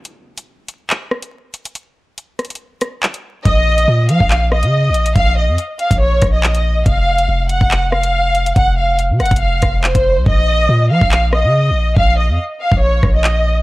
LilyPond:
<<
  \new Staff \with { instrumentName = "Violin section" } { \time 4/4 \key bes \minor \tempo 4 = 141 r1 | r1 | ees''4. f''4 ees''4. | f''8 ees''8 r8 f''8 des''8. ees''4~ ees''16 |
f''4. ges''4 f''4. | ges''8 f''8 r8 ges''8 f''4 c''4 | ees''4. f''4 ees''4. | f''8 ees''8 r8 f''8 des''8. ees''4~ ees''16 | }
  \new Staff \with { instrumentName = "808-style bass" } { \clef bass \time 4/4 \key bes \minor r1 | r1 | bes,,4 bes,8 f16 bes,,4 des8~ des32 bes,,8~ bes,,32 | bes,,8. f,16 r8. bes,,8. bes,,4. |
f,,4 f,,8. f,,2~ f,,16 | f,,4~ f,,16 c16 f,,16 f,,8. f,,8. f,,8 c,16 | bes,,4 bes,8 f16 bes,,4 des8~ des32 bes,,8~ bes,,32 | bes,,8. f,16 r8. bes,,8. bes,,4. | }
  \new DrumStaff \with { instrumentName = "Drums" } \drummode { \time 4/4 hh8. hh16 r8 hh8 hc8 ss16 hh16 r8 hh16 hh16 | hh4 hh8 <hh ss>32 hh32 hh32 hh32 r8 <hh ss>8 hc16 hh8. | <hh bd>8. hh16 r8 hh16 bd16 hc8 ss16 hh16 r8 hh16 hh16 | <hh bd>4 hh8 hh16 <hh bd>16 r8 <hh bd ss>8 hc16 hh8. |
<hh bd>8. hh16 r8 hh16 bd16 hc8 ss16 hh16 r8 hh16 hh16 | <hh bd>4 hh8 <hh ss>32 hh32 <hh bd>32 hh32 r8 <hh bd ss>8 hc16 <hh bd>8. | bd4 r8. bd16 hc8 ss8 r4 | bd4 r8. bd16 r8 <bd ss>8 hc4 | }
>>